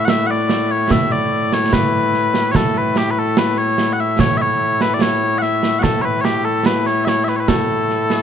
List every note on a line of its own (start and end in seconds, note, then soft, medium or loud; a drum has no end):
0.00 8.22 A2 medium
0.00 8.22 A3 medium
0.00 8.22 E4 medium
0.05 0.09 F#5 loud
0.05 snare loud
0.09 0.27 E5 loud
0.27 0.71 D5 medium
0.27 0.30 F#5 medium
0.49 snare medium
0.71 0.91 C#5 medium
0.90 1.12 E5 loud
0.90 concert bass drum medium
0.90 snare loud
1.12 1.53 D5 medium
1.52 1.73 C#5 medium
1.52 snare medium
1.73 2.52 B4 medium
1.73 concert bass drum medium
1.73 snare loud
2.14 snare soft
2.34 snare medium
2.52 2.56 C#5 medium
2.52 concert bass drum medium
2.52 snare medium
2.56 2.77 A4 medium
2.77 2.98 B4 medium
2.96 3.11 G4 medium
2.96 snare medium
3.11 3.19 B4 medium
3.19 3.38 A4 medium
3.37 3.58 B4 medium
3.37 snare loud
3.58 3.93 C#5 medium
3.78 snare medium
3.93 4.00 F#5 medium
4.00 4.20 E5 medium
4.19 4.37 C#5 loud
4.19 concert bass drum medium
4.19 snare medium
4.37 4.41 E5 medium
4.41 4.82 C#5 medium
4.81 4.94 B4 medium
4.81 snare medium
4.94 5.01 D5 medium
5.01 5.38 C#5 medium
5.01 snare loud
5.38 5.79 E5 medium
5.38 5.42 F#5 medium
5.42 snare soft
5.63 snare medium
5.79 6.02 A4 medium
5.79 5.83 F#5 medium
5.84 concert bass drum medium
5.84 snare medium
6.02 6.21 B4 medium
6.02 6.05 C#5 medium
6.21 6.45 G4 medium
6.21 6.25 C#5 medium
6.21 snare medium
6.45 6.66 A4 medium
6.66 6.87 B4 medium
6.66 snare loud
6.87 7.05 C#5 medium
6.87 snare soft
7.05 7.24 C#5 medium
7.05 7.08 E5 medium
7.05 snare medium
7.24 7.29 E5 medium
7.24 snare soft
7.29 7.36 B4 medium
7.36 7.48 B4 medium
7.36 7.40 C#5 medium
7.48 8.22 A4 medium
7.48 concert bass drum medium
7.48 snare loud
7.89 snare soft
8.10 snare medium